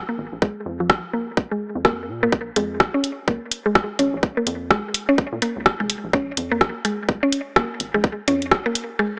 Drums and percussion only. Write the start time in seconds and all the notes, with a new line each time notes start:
0.42 kick
0.90 kick, cross-stick
1.37 kick
1.85 kick, cross-stick
2.32 kick
2.56 closed hi-hat
2.80 kick, cross-stick
3.04 closed hi-hat
3.28 kick
3.51 closed hi-hat
3.75 kick, cross-stick
3.99 closed hi-hat
4.23 kick
4.47 closed hi-hat
4.71 kick, cross-stick
4.94 closed hi-hat
5.18 kick
5.42 closed hi-hat
5.66 kick, cross-stick
5.90 closed hi-hat
6.13 kick
6.37 closed hi-hat
6.61 kick, cross-stick
6.85 closed hi-hat
7.09 kick
7.32 closed hi-hat
7.56 kick, cross-stick
7.80 closed hi-hat
8.04 kick
8.28 closed hi-hat
8.42 closed hi-hat
8.51 kick, cross-stick
8.75 closed hi-hat